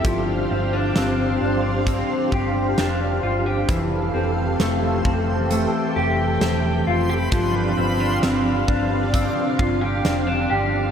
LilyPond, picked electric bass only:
\new Staff \with { instrumentName = "Picked electric bass" } { \clef bass \time 4/4 \key g \dorian \tempo 4 = 66 g,,8 g,,8 g,,8 g,,8. r16 g,,8 f,,8 g,,8 | f,,8 f,,8 f,,8 f,,8. r16 f,,8 e,,8 f,,8 | g,,8 g,,8 g,,8 g,,8. r16 g,,8 f,,8 g,,8 | }